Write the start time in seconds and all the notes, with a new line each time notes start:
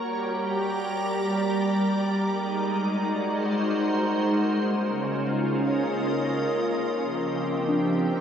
Already playing: G3 A#3 G4 A#4 A#5
0.34 D5
0.41 A#5
2.22 G#3 D#4
2.82 F#4
3.20 C5
4.55 C#3 A#3 A#4
4.68 C#4
4.97 F4
5.42 D#5
6.12 A#4
6.91 F3
7.02 C4
7.09 G4
7.68 D4
7.98 F5